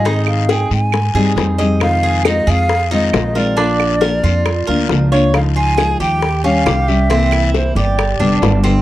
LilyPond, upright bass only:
\new Staff \with { instrumentName = "Upright bass" } { \clef bass \time 4/4 \key aes \lydian \tempo 4 = 136 aes,4. aes,4 g,8 f,4~ | f,4. f,4. bes,,4~ | bes,,4. f,4 d,8 des,4~ | des,4. ees,4. c,4~ |
c,4. g,,4 f,,8 g,,4 | }